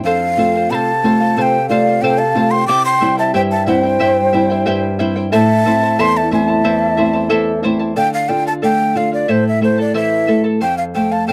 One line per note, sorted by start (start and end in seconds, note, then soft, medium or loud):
0.04 0.68 F2 medium
0.04 0.37 A4 medium
0.04 0.38 C5 medium
0.04 0.72 F5 medium
0.04 0.39 F5 medium
0.37 0.90 A3 soft
0.37 0.90 C4 soft
0.37 0.91 F4 medium
0.37 0.55 A4 medium
0.37 0.55 C5 medium
0.37 0.54 F5 medium
0.55 0.71 C5 soft
0.55 0.71 F5 medium
0.71 1.35 C3 medium
0.71 1.03 A4 medium
0.71 1.04 C5 medium
0.71 1.05 F5 medium
0.71 0.76 B5 medium
0.75 1.37 A5 medium
1.04 1.56 A3 medium
1.04 1.57 C4 soft
1.04 1.57 F4 medium
1.04 1.20 A4 medium
1.04 1.21 C5 medium
1.04 1.19 F5 medium
1.20 1.37 C5 soft
1.20 1.37 F5 medium
1.37 2.01 C3 medium
1.37 1.69 A4 medium
1.37 1.69 C5 medium
1.37 1.70 C5 medium
1.37 1.70 F5 medium
1.37 1.43 A5 medium
1.42 1.69 G5 loud
1.69 2.22 A3 soft
1.69 2.22 C4 soft
1.69 2.23 F4 medium
1.69 1.86 A4 medium
1.69 1.87 C5 medium
1.69 2.05 D5 medium
1.69 2.03 F5 medium
1.69 1.86 F5 medium
1.87 2.03 C5 soft
1.87 2.03 F5 medium
2.01 2.66 C3 medium
2.01 2.34 A4 medium
2.01 2.22 C5 medium
2.01 2.35 C5 medium
2.01 2.36 F5 medium
2.01 2.20 G5 medium
2.18 2.55 F5 medium
2.18 2.52 A5 medium
2.35 2.61 A3 medium
2.35 2.62 C4 soft
2.35 2.62 F4 medium
2.35 2.52 A4 medium
2.35 2.52 C5 medium
2.35 2.51 F5 medium
2.51 2.68 C5 soft
2.51 2.68 F5 soft
2.51 2.69 G5 medium
2.51 2.67 C6 medium
2.67 3.32 C3 medium
2.67 3.00 E4 medium
2.67 3.01 G4 medium
2.67 3.01 C5 medium
2.67 2.99 E5 medium
2.67 3.01 G5 medium
2.67 2.85 G5 medium
2.67 2.83 D6 loud
2.85 3.16 G5 medium
2.85 3.16 C6 medium
3.01 3.54 G3 soft
3.01 3.54 C4 soft
3.01 3.18 E4 medium
3.01 3.55 E4 medium
3.01 3.17 C5 medium
3.01 3.17 E5 medium
3.01 3.16 G5 medium
3.17 3.33 E4 soft
3.17 3.33 C5 soft
3.17 3.34 E5 medium
3.17 3.34 G5 soft
3.17 3.34 A5 medium
3.34 3.98 G2 medium
3.34 3.66 E4 medium
3.34 3.67 G4 medium
3.34 3.66 C5 medium
3.34 3.41 C5 medium
3.34 3.65 E5 medium
3.34 3.67 G5 medium
3.34 3.41 G5 medium
3.51 3.66 E5 medium
3.51 3.66 A5 medium
3.66 4.20 G3 medium
3.66 4.20 C4 medium
3.66 3.83 E4 medium
3.66 4.20 E4 medium
3.66 3.83 C5 medium
3.66 4.96 C5 medium
3.66 3.83 E5 medium
3.66 3.79 F#5 medium
3.66 3.82 G5 medium
3.79 4.95 G5 medium
3.83 3.99 E4 soft
3.83 3.99 C5 soft
3.83 4.00 G5 medium
3.99 4.65 G2 medium
3.99 4.32 E4 medium
3.99 4.33 G4 medium
3.99 4.33 C5 medium
3.99 4.31 E5 medium
3.99 4.33 G5 medium
4.33 4.86 G3 soft
4.33 4.86 C4 soft
4.33 4.50 E4 medium
4.33 4.87 E4 medium
4.33 4.50 C5 medium
4.33 4.49 E5 medium
4.33 4.49 G5 medium
4.50 4.65 E4 medium
4.50 4.65 C5 medium
4.50 4.66 G5 medium
4.66 5.31 G2 medium
4.66 4.98 E4 medium
4.66 4.99 G4 medium
4.66 4.99 C5 medium
4.66 4.98 E5 medium
4.66 4.99 G5 medium
4.99 5.26 G3 medium
4.99 5.26 C4 medium
4.99 5.16 E4 medium
4.99 5.26 E4 medium
4.99 5.15 C5 medium
4.99 5.16 E5 medium
4.99 5.15 G5 medium
5.16 5.31 E4 soft
5.16 5.31 C5 soft
5.16 5.32 G5 medium
5.32 5.97 A2 medium
5.32 5.65 E4 medium
5.32 5.65 A4 medium
5.32 5.65 C5 medium
5.32 5.64 E5 medium
5.32 6.01 E5 medium
5.32 5.65 A5 medium
5.32 6.02 A5 loud
5.66 6.19 A3 soft
5.66 6.19 C4 soft
5.66 5.82 E4 medium
5.66 6.19 E4 medium
5.66 5.81 C5 medium
5.66 5.82 E5 medium
5.66 5.80 A5 medium
5.82 5.98 E4 soft
5.82 5.98 C5 soft
5.82 5.98 A5 soft
5.99 6.63 E2 medium
5.99 6.30 E4 medium
5.99 6.31 A4 medium
5.99 6.31 C5 medium
5.99 6.30 E5 medium
5.99 6.31 A5 medium
5.99 6.18 A5 medium
5.99 6.18 C6 loud
6.17 6.32 E5 medium
6.17 6.32 A5 medium
6.31 6.84 A3 medium
6.31 6.85 C4 soft
6.31 6.48 E4 medium
6.31 6.85 E4 medium
6.31 6.48 C5 medium
6.31 6.48 E5 medium
6.31 7.60 E5 medium
6.31 6.47 A5 medium
6.31 7.61 A5 medium
6.48 6.63 E4 soft
6.48 6.63 C5 soft
6.48 6.64 A5 soft
6.64 7.29 E2 medium
6.64 6.96 E4 medium
6.64 6.97 A4 medium
6.64 6.97 C5 medium
6.64 6.96 E5 medium
6.64 6.98 A5 medium
6.97 7.50 A3 soft
6.97 7.51 C4 soft
6.97 7.14 E4 medium
6.97 7.51 E4 medium
6.97 7.13 C5 medium
6.97 7.14 E5 medium
6.97 7.12 A5 medium
7.13 7.29 E4 soft
7.13 7.29 C5 medium
7.13 7.29 A5 medium
7.29 7.95 E2 medium
7.29 7.62 E4 medium
7.29 7.62 A4 medium
7.29 7.63 C5 medium
7.29 7.62 E5 medium
7.29 7.63 A5 medium
7.63 7.90 A3 medium
7.63 7.91 C4 soft
7.63 7.80 E4 medium
7.63 7.91 E4 medium
7.63 7.79 C5 medium
7.63 7.80 E5 medium
7.63 7.78 A5 medium
7.79 7.96 E4 soft
7.79 7.97 C5 medium
7.79 7.96 A5 medium
7.96 9.25 D3 medium
7.96 8.27 A4 medium
7.96 8.28 D5 medium
7.96 8.28 F5 medium
7.96 8.12 G5 loud
8.14 8.30 F5 medium
8.28 8.62 F4 soft
8.28 8.46 A4 soft
8.28 8.45 D5 medium
8.28 8.44 F5 medium
8.28 8.46 G5 medium
8.45 8.61 D5 soft
8.45 8.62 F5 soft
8.45 8.53 A5 medium
8.62 8.95 A3 soft
8.62 8.94 A4 medium
8.62 8.95 D5 medium
8.62 8.96 F5 medium
8.62 8.99 G5 loud
8.95 9.28 F4 medium
8.95 9.12 A4 medium
8.95 9.12 D5 medium
8.95 9.10 F5 medium
8.95 9.13 F5 medium
9.12 9.28 D5 soft
9.12 9.32 D5 medium
9.12 9.28 F5 medium
9.28 10.58 A2 medium
9.28 9.61 E4 medium
9.28 9.61 A4 medium
9.28 9.62 C5 medium
9.28 9.46 C5 medium
9.28 9.60 E5 medium
9.28 9.62 A5 medium
9.48 9.63 E5 medium
9.61 9.94 A3 soft
9.61 9.78 E4 medium
9.61 9.77 A4 medium
9.61 9.79 C5 medium
9.61 9.78 E5 medium
9.61 9.77 A5 medium
9.78 9.94 E4 soft
9.78 9.94 A4 soft
9.78 9.95 D5 medium
9.78 9.94 A5 medium
9.94 10.27 E3 soft
9.94 10.27 E4 medium
9.94 10.27 A4 medium
9.94 10.28 C5 medium
9.94 10.26 E5 medium
9.94 10.42 E5 loud
9.94 10.27 A5 medium
10.27 10.61 A3 medium
10.27 10.44 E4 medium
10.27 10.43 A4 medium
10.27 10.44 E5 medium
10.27 10.43 A5 medium
10.44 10.60 E4 soft
10.44 10.59 A4 soft
10.44 10.61 A5 medium
10.60 11.33 F2 medium
10.60 10.93 A4 medium
10.60 10.94 C5 medium
10.60 10.94 F5 medium
10.60 10.77 G5 loud
10.78 10.84 F5 medium
10.95 11.28 A3 medium
10.95 11.11 A4 medium
10.95 11.11 C5 medium
10.95 11.10 F5 medium
10.95 11.14 G5 medium
11.11 11.27 C5 soft
11.11 11.28 F5 medium
11.11 11.27 A5 medium
11.28 11.33 C3 soft
11.28 11.33 A4 medium
11.28 11.33 C5 medium
11.28 11.33 F5 medium
11.28 11.33 G5 loud